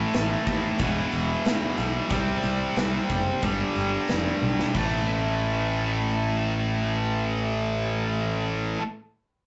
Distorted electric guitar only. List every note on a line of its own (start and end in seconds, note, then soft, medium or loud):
0.00 0.78 A2 medium
0.00 0.79 E3 medium
0.00 0.80 A3 loud
0.80 2.10 E2 medium
0.80 2.10 B2 medium
0.80 2.11 E3 medium
2.10 3.40 C3 medium
2.10 3.41 G3 medium
2.10 3.41 C4 medium
3.43 4.72 G2 medium
3.43 4.73 D3 medium
3.43 4.74 G3 medium
4.74 8.78 A2 medium
4.74 8.80 E3 medium
4.74 8.82 A3 loud